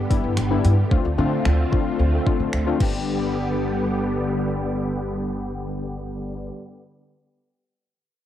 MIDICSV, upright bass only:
0, 0, Header, 1, 2, 480
1, 0, Start_track
1, 0, Key_signature, 1, "major"
1, 0, Tempo, 540541
1, 809, Time_signature, 4, 2, 24, 8
1, 7330, End_track
2, 0, Start_track
2, 0, Title_t, "Upright bass"
2, 0, Program_c, 0, 32
2, 92, Note_on_c, 0, 43, 88
2, 169, Note_off_c, 0, 43, 0
2, 208, Note_on_c, 0, 43, 90
2, 287, Note_off_c, 0, 43, 0
2, 330, Note_on_c, 0, 31, 91
2, 485, Note_off_c, 0, 31, 0
2, 573, Note_on_c, 0, 43, 92
2, 727, Note_off_c, 0, 43, 0
2, 809, Note_on_c, 0, 38, 108
2, 887, Note_off_c, 0, 38, 0
2, 931, Note_on_c, 0, 38, 94
2, 1008, Note_off_c, 0, 38, 0
2, 1050, Note_on_c, 0, 50, 105
2, 1206, Note_off_c, 0, 50, 0
2, 1291, Note_on_c, 0, 38, 98
2, 1446, Note_off_c, 0, 38, 0
2, 1531, Note_on_c, 0, 50, 92
2, 1686, Note_off_c, 0, 50, 0
2, 1769, Note_on_c, 0, 38, 97
2, 1925, Note_off_c, 0, 38, 0
2, 2011, Note_on_c, 0, 50, 90
2, 2088, Note_off_c, 0, 50, 0
2, 2127, Note_on_c, 0, 50, 90
2, 2206, Note_off_c, 0, 50, 0
2, 2248, Note_on_c, 0, 38, 97
2, 2404, Note_off_c, 0, 38, 0
2, 2490, Note_on_c, 0, 31, 88
2, 5758, Note_off_c, 0, 31, 0
2, 7330, End_track
0, 0, End_of_file